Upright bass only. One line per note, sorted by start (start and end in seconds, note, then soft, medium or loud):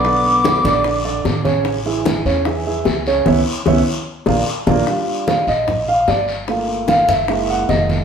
0.00 0.59 B1 medium
0.64 1.21 A#1 medium
1.25 2.19 A1 medium
2.25 2.82 E2 medium
2.86 3.23 C#2 medium
3.26 3.41 C#2 medium
3.66 3.81 C#2 medium
4.27 4.42 A#1 medium
4.67 4.82 A#1 medium
5.47 6.04 A#1 medium
6.08 7.03 G1 medium
7.08 7.65 F#1 medium
7.69 8.04 F1 medium